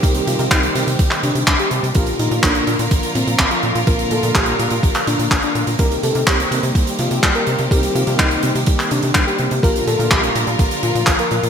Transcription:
<<
  \new Staff \with { instrumentName = "Soft synth lead" } { \time 4/4 \key c \minor \tempo 4 = 125 g'8 f'8 ees'8 r4 d'8 r16 g'8 r16 | f'8 ees'8 d'8 r4 c'8 r16 f'8 r16 | bes'8 a'8 g'8 r4 d'8 r16 d'8 r16 | bes'8 a'8 g'8 r4 f'8 r16 bes'8 r16 |
g'8 f'8 ees'8 r4 d'8 r16 g'8 r16 | bes'8 a'8 g'8 r4 f'8 r16 bes'8 r16 | }
  \new Staff \with { instrumentName = "Tine electric piano" } { \time 4/4 \key c \minor <c c' ees' g' bes'>8. <c c' ees' g' bes'>8. <c c' ees' g' bes'>16 r2 r16 | <bes, bes d' f' bes'>8. <bes, bes d' f' bes'>8. <bes, bes d' f' bes'>16 r2 r16 | <bes, bes d' f' bes'>8. <bes, bes d' f' bes'>8. <bes, bes d' f' bes'>16 r2 r16 | <c c' ees' g' bes'>8. <c c' ees' g' bes'>8. <c c' ees' g' bes'>16 r2 r16 |
<c c' ees' g' bes'>8. <c c' ees' g' bes'>8. <c c' ees' g' bes'>16 r2 r16 | <bes, bes d' f' bes'>8. <bes, bes d' f' bes'>8. <bes, bes d' f' bes'>16 r2 r16 | }
  \new Staff \with { instrumentName = "String section" } { \time 4/4 \key c \minor << { <ees g c' g'>1 | <d f f' bes'>1~ | <d f f' bes'>1 | <ees g c' g'>1~ |
<ees g c' g'>1 | <d f f' bes'>1 | } \\ { bes1 | bes1~ | bes1~ | bes1~ |
bes1~ | bes1 | } >> }
  \new Staff \with { instrumentName = "Analog synth bass" } { \clef bass \time 4/4 \key c \minor c,16 r16 c16 c16 c,16 r16 c16 c16 c,16 r16 c16 c16 c,16 r16 c16 c16 | bes,,16 r16 bes,16 bes,16 bes,,16 r16 bes,16 bes,16 bes,,16 r16 bes,16 bes,16 bes,,16 r16 bes,16 bes,16 | bes,,16 r16 bes,16 bes,16 bes,,16 r16 bes,16 bes,16 bes,,16 r16 bes,16 bes,16 bes,,16 r16 bes,16 bes,16 | c,16 r16 c16 c16 c,16 r16 c16 c16 c,16 r16 c16 c16 c,16 r16 c16 c16 |
c,16 r16 c16 c16 c,16 r16 c16 c16 c,16 r16 c16 c16 c,16 r16 c16 c16 | bes,,16 r16 bes,16 bes,16 bes,,16 r16 bes,16 bes,16 bes,,16 r16 bes,16 bes,16 bes,,16 r16 bes,16 bes,16 | }
  \new DrumStaff \with { instrumentName = "Drums" } \drummode { \time 4/4 <hh bd>16 hh16 hh16 hh16 <hc hh bd>16 hh16 hh16 hh16 <hh bd>16 <hc hh>16 hh16 hh16 <hc hh bd>16 hh16 hh16 hh16 | <hh bd>16 hh16 hh16 hh16 <hc hh bd>16 hh16 hh16 hh16 <hh bd>16 hh16 hh16 hh16 <hc hh bd>16 hh16 hh16 hh16 | <hh bd>16 hh16 hh16 hh16 <hc hh bd>16 hh16 hh16 hh16 <hh bd>16 <hc hh>16 hh16 hh16 <hc hh bd>16 hh16 hh16 hh16 | <hh bd>16 hh16 hh16 hh16 <hc hh bd>16 hh16 hh16 hh16 <hh bd>16 hh16 hh16 hh16 <hc hh bd>16 hh16 hh16 hh16 |
<hh bd>16 hh16 hh16 hh16 <hc hh bd>16 hh16 hh16 hh16 <hh bd>16 <hc hh>16 hh16 hh16 <hc hh bd>16 hh16 hh16 hh16 | <hh bd>16 hh16 hh16 hh16 <hc hh bd>16 hh16 hh16 hh16 <hh bd>16 hh16 hh16 hh16 <hc hh bd>16 hh16 hh16 hh16 | }
>>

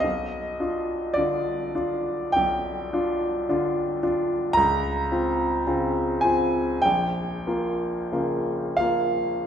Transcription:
\new Staff \with { instrumentName = "Grand piano" } { \time 4/4 \key g \phrygian \tempo 4 = 53 << { ees''4 d''4 g''4. r8 | \key bes \dorian bes''4. aes''8 g''4. f''8 | } \\ { b,,8 <d' f'>8 <d d' f'>8 <d' f'>8 b,,8 <d' f'>8 <d d' f'>8 <d' f'>8 | des,8 <c' f'>8 <des c' f'>8 <c' f'>8 bes,,8 <bes f'>8 <des bes f'>8 <bes f'>8 | } >> }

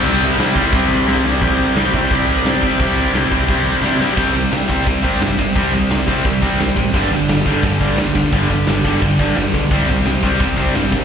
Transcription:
<<
  \new Staff \with { instrumentName = "Distorted electric guitar" } { \clef bass \time 4/4 \key c \major \tempo 4 = 174 <c g c' e'>4 <c g c' e'>8 <c g c' e'>8 <c g c' e'>4 <c g c' e'>8 <c g c' e'>8 | <c g c' e' g'>4 <c g c' e' g'>8 <c g c' e' g'>8 <c g c' e' g'>4 <c g c' e' g'>8 <c g c' e' g'>8 | <c g c' e' g'>4 <c g c' e' g'>8 <c g c' e' g'>8 <c g c' e' g'>4 <c g c' e' g'>8 <c g c' e' g'>8 | <c g c'>8 <c g>8 <c g>8 <c g c'>8 <c g>8 <c g c'>8 <c g>8 <c g>8 |
<c g c'>8 <c g>8 <c g>8 <c g c'>8 <c g>8 <c g c'>8 <c g>8 <c g>8 | <g, d g>8 <g, d>8 <g, d>8 <g, d g>8 <g, d>8 <g, d g>8 <g, d>8 <g, d>8 | <g, d g>8 <g, d>8 <g, d>8 <g, d g>8 <g, d>8 <g, d g>8 <g, d>8 <g, d>8 | <c g c'>8 <c g>8 <c g>8 <c g c'>8 <c g>8 <c g c'>8 <c g>8 <c g>8 | }
  \new Staff \with { instrumentName = "Distorted electric guitar" } { \clef bass \time 4/4 \key c \major <c g c'>4 <c g c'>8 <c g c'>8 <c g c'>4 <c g c'>8 <c g c'>8 | <c g c'>4 <c g c'>8 <c g c'>8 <c g c'>4 <c g c'>8 <c g c'>8 | <c g c'>4 <c g c'>8 <c g c'>8 <c g c'>4 <c g c'>8 <c g c'>8 | <c g c'>8 <c g>8 <c g>8 <c g c'>8 <c g>8 <c g c'>8 <c g>8 <c g>8 |
<c g c'>8 <c g>8 <c g>8 <c g c'>8 <c g>8 <c g c'>8 <c g>8 <c g>8 | <g, d g>8 <g, d>8 <g, d>8 <g, d g>8 <g, d>8 <g, d g>8 <g, d>8 <g, d>8 | <g, d g>8 <g, d>8 <g, d>8 <g, d g>8 <g, d>8 <g, d g>8 <g, d>8 <g, d>8 | <c g c'>8 <c g>8 <c g>8 <c g c'>8 <c g>8 <c g c'>8 <c g>8 <c g>8 | }
  \new Staff \with { instrumentName = "Overdriven electric guitar" } { \clef bass \time 4/4 \key c \major <c g c'>2.~ <c g c'>8 r8 | r1 | r1 | <c g c'>8 <c g c'>8 <c g c'>8 <c g c'>8 <c g c'>8 <c g c'>8 <c g c'>8 <c g c'>8 |
<c g c'>8 <c g c'>8 <c g c'>8 <c g c'>8 <c g c'>8 <c g c'>8 <c g c'>8 <c g c'>8 | <g, d g>8 <g, d g>8 <g, d g>8 <g, d g>8 <g, d g>8 <g, d g>8 <g, d g>8 <g, d g>8 | <g, d g>8 <g, d g>8 <g, d g>8 <g, d g>8 <g, d g>8 <g, d g>8 <g, d g>8 <g, d g>8 | <c g c'>8 <c g c'>8 <c g c'>8 <c g c'>8 <c g c'>8 <c g c'>8 <c g c'>8 <c g c'>8 | }
  \new Staff \with { instrumentName = "Picked electric bass" } { \clef bass \time 4/4 \key c \major c,8 c,8 c,8 c,8 c,8 c,8 c,4 | c,4 c,8 c,8 c,4 c4 | c,4 c,8 c,8 c,4 c4 | c,8 c,8 c,8 c,8 c,4 g,4 |
c,4 c,8 c,8 c,8 c,8 c,8 a,,8 | g,,8 g,,8 g,,8 g,,8 g,,4 d,4 | g,,4 g,,8 g,,8 g,,8 g,,8 g,,8 b,,8 | c,8 c,8 c,8 c,8 c,4 g,4 | }
  \new DrumStaff \with { instrumentName = "Drums" } \drummode { \time 4/4 cymc4 <cymc sn>8 bd8 <cymc bd>4 sn8 sn8 | <cymc bd>4 <cymc sn>8 bd8 <cymc bd>4 <cymc sn>8 bd8 | <cymc bd>4 <cymc sn>8 bd8 <cymc bd>4 sn8 sn8 | <cymc bd>8 hho8 <hho sn>8 <hho bd>8 <hho bd>8 <hho bd>8 <hho sn>8 <hho bd>8 |
<hho bd>8 hho8 <hho sn>8 <hho bd>8 <hho bd>8 <hho bd>8 <hho sn>8 <hho bd>8 | <hho bd>8 hho8 <hho sn>8 <hho bd>8 <hho bd>8 <hho bd>8 <hho sn>8 <hho bd>8 | <hho bd>8 hho8 <hho sn>8 <hho bd>8 <hho bd>8 <hho bd>8 <hho sn>8 <hho bd>8 | <hho bd>8 hho8 <hho sn>8 <hho bd>8 <hho bd>8 <hho bd>8 <hho sn>8 <hho bd>8 | }
>>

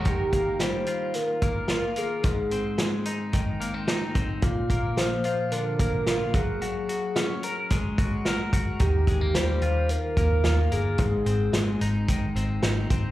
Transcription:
<<
  \new Staff \with { instrumentName = "Soft synth lead" } { \time 4/4 \key aes \lydian \tempo 4 = 110 g'4 c''4 bes'4. aes'8~ | aes'2~ aes'8 r4. | f'4 c''4 bes'4. aes'8~ | aes'2~ aes'8 r4. |
g'4 c''4 bes'4. aes'8~ | aes'2~ aes'8 r4. | }
  \new Staff \with { instrumentName = "Clean electric guitar" } { \time 4/4 \key aes \lydian ees8 bes8 g8 f'4 bes8 f'8 bes8 | aes,8 c'8 aes8 ees'8 ees8 bes16 c'16 ees'8 c'8 | bes,8 bes8 f8 f'8 d8 bes8 f'8 ges8 | ges8 ges'8 des'8 bes'8 aes8 ges'8 bes'8 ges'8 |
ees8 aes16 bes16 g8 f'4 bes8 f'8 bes8 | aes,8 c'8 aes8 ees'8 ees8 c'8 ees'8 c'8 | }
  \new Staff \with { instrumentName = "Picked electric bass" } { \clef bass \time 4/4 \key aes \lydian r1 | r1 | r1 | r1 |
ees,8 ees,8 ees,8 ees,8. r16 ees,8 ees,8 g,,8 | aes,,8 aes,,8 aes,,8 aes,,8. r16 aes,,8 aes,,8 aes,,8 | }
  \new DrumStaff \with { instrumentName = "Drums" } \drummode { \time 4/4 <hh bd>8 <hh bd>8 <hh sn>8 hh8 <hh sn>8 <hh bd>8 <hh sn>8 hh8 | <hh bd>8 hh8 <hh sn>8 hh8 <hh bd>8 hh8 <hh sn>8 <hh bd>8 | <hh bd>8 <hh bd>8 <hh sn>8 hh8 hh8 <hh bd>8 <hh sn>8 <hh bd>8 | hh8 hh8 <hh sn>8 hh8 <hh bd sn>8 <hh bd>8 <hh sn>8 <hh bd>8 |
<hh bd>8 <hh bd>8 <hh sn>8 hh8 hh8 <hh bd>8 <hh sn>8 hh8 | <hh bd>8 hh8 <hh sn>8 hh8 <hh bd>8 hh8 <hh sn>8 <hh bd>8 | }
>>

